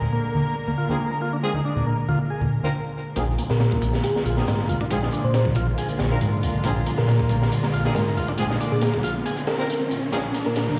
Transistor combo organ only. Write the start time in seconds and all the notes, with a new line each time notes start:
0.13 A#3
0.68 A#3
0.78 F4
0.89 A#3
1.00 A#3
1.11 A#4
1.22 F4
1.33 D4
1.43 G#3
1.55 D#4
1.65 D4
1.87 A#3
2.08 F4
2.30 G#4
3.17 A#3
3.39 A#3
3.60 A#3
4.15 A#3
4.26 F4
4.37 A#3
4.47 A#3
4.59 A#4
4.69 F4
4.81 D4
4.91 G#3
5.02 D#4
5.13 D4
5.34 A#3
5.56 F4
5.78 G#4
6.65 A#3
6.87 A#3
7.09 A#3
7.63 A#3
7.74 F4
7.85 A#3
7.95 A#3
8.07 A#4
8.17 F4
8.29 D4
8.39 G#3
8.50 D#4
8.60 D4
8.82 A#3
9.04 F4
9.26 G#4
10.12 A#3
10.34 A#3
10.56 A#3